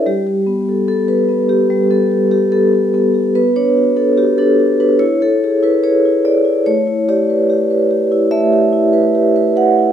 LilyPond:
\new Staff \with { instrumentName = "Vibraphone" } { \time 4/4 \key g \lydian \tempo 4 = 72 << { g'4 a'16 b'8 g'8 a'8 g'16 a'8 a'8 | b'16 cis''8 a'16 g'16 a'8 b'16 cis''16 a'8 b'16 cis''8 d''8 | cis''8 d''4. e''4. fis''8 | } \\ { g16 g'16 b16 a'16 b16 a'16 b8 g16 b16 g'16 a'16 b16 a'16 b16 g'16 | b16 d'16 fis'16 d'16 fis'16 d'16 fis'16 d'16 e'16 e'16 gis'16 e'16 gis'16 e'16 gis'16 e'16 | a16 e'16 g'16 b'16 g'16 b'16 g'16 e'16 a16 g'16 e'16 b'16 g'16 b'16 g'16 e'16 | } >> }